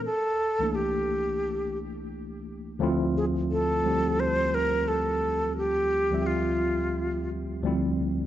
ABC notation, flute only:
X:1
M:4/4
L:1/8
Q:"Swing 16ths" 1/4=87
K:Dm
V:1 name="Flute"
A2 G3 z3 | z ^G A2 c B A2 | G2 F3 z3 |]